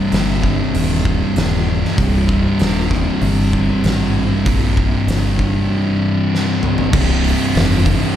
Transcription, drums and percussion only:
0.12 snare, open hi-hat
0.43 kick
0.74 open hi-hat
1.05 kick
1.36 snare, open hi-hat
1.85 snare
1.98 kick, open hi-hat
2.29 kick
2.59 snare, open hi-hat
2.91 kick, snare
3.21 open hi-hat
3.53 kick
3.84 snare, open hi-hat
4.46 kick, open hi-hat
4.77 kick
5.08 snare, open hi-hat
5.39 kick
6.35 snare
6.63 mid tom
6.78 floor tom
6.93 kick, crash
7.24 open hi-hat
7.55 snare, open hi-hat
7.86 kick, open hi-hat

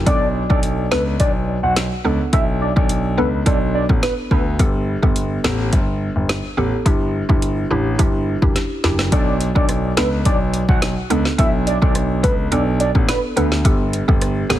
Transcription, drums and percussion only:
0.07 kick, closed hi-hat
0.50 kick
0.63 closed hi-hat
0.92 snare
1.20 kick, closed hi-hat
1.76 snare, closed hi-hat
2.33 kick, closed hi-hat
2.77 kick
2.89 closed hi-hat
3.46 kick, closed hi-hat
3.89 kick
4.03 snare, closed hi-hat
4.31 kick
4.59 kick, closed hi-hat
5.03 kick
5.16 closed hi-hat
5.44 snare
5.73 kick, closed hi-hat
6.29 snare, closed hi-hat
6.86 kick, closed hi-hat
7.29 kick
7.42 closed hi-hat
7.99 kick, closed hi-hat
8.42 kick
8.56 snare, closed hi-hat
8.84 snare
8.99 snare
9.12 kick, closed hi-hat
9.41 closed hi-hat
9.56 kick
9.69 cross-stick, closed hi-hat
9.97 snare, closed hi-hat
10.25 kick, closed hi-hat
10.54 closed hi-hat
10.69 kick
10.82 snare, closed hi-hat
11.10 closed hi-hat
11.25 snare
11.39 kick, closed hi-hat
11.67 closed hi-hat
11.82 kick
11.95 cross-stick, closed hi-hat
12.24 kick, closed hi-hat
12.52 closed hi-hat
12.80 closed hi-hat
12.95 kick
13.09 snare, closed hi-hat
13.37 closed hi-hat
13.52 snare
13.65 kick, closed hi-hat
13.93 closed hi-hat
14.09 kick
14.21 cross-stick, closed hi-hat
14.50 snare, closed hi-hat

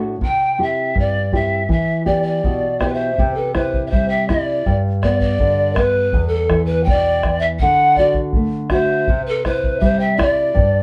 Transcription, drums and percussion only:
0.21 bombo low
0.96 bombo low
1.32 bombo low
1.69 bombo low
2.07 bombo low
2.44 bombo low
2.81 bombo rim, bombo low
3.18 bombo low
3.55 bombo rim, bombo low
3.74 bombo low
3.92 bombo low
4.29 bombo rim, bombo low
4.66 bombo low
5.03 bombo rim, bombo low
5.20 bombo low
5.39 bombo low
5.76 bombo rim, bombo low
6.13 bombo low
6.50 bombo rim, bombo low
6.87 bombo low
7.23 bombo rim, bombo low
7.59 bombo low
7.96 bombo low
8.14 bombo low
8.33 bombo low
8.70 bombo rim, bombo low
9.08 bombo low
9.45 bombo rim, bombo low
9.64 bombo low
9.82 bombo low
10.19 bombo rim, bombo low
10.57 bombo low

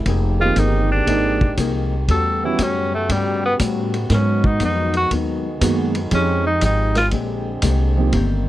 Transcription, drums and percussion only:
0.06 kick, ride
0.56 kick, hi-hat pedal, ride
1.07 kick, ride
1.41 kick
1.57 kick, hi-hat pedal, ride
2.08 kick, ride
2.59 kick, hi-hat pedal, ride
3.09 kick, ride
3.59 kick, hi-hat pedal, ride
3.94 ride
4.10 kick, snare, ride
4.44 kick
4.60 kick, hi-hat pedal, ride
4.94 ride
5.11 kick, ride
5.61 kick, hi-hat pedal, ride
5.95 ride
6.11 kick, ride
6.61 kick, hi-hat pedal, ride
6.95 snare, ride
7.11 kick, ride
7.62 kick, hi-hat pedal, ride
8.13 kick, ride

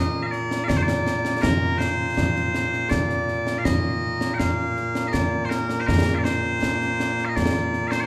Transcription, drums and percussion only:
0.32 snare
0.51 snare
0.70 concert bass drum, snare
0.88 snare
1.07 snare
1.25 snare
1.43 concert bass drum, snare
1.80 snare
2.17 concert bass drum, snare
2.36 snare
2.55 snare
2.73 snare
2.91 concert bass drum, snare
3.10 snare
3.28 snare
3.47 snare
3.65 concert bass drum, snare
4.21 snare
4.40 concert bass drum, snare
4.77 snare
4.95 snare
5.14 concert bass drum, snare
5.51 snare
5.69 snare
5.88 concert bass drum, snare
6.25 snare
6.63 concert bass drum, snare
6.81 snare
7.00 snare
7.18 snare
7.37 concert bass drum, snare
7.55 snare
7.73 snare
7.92 snare

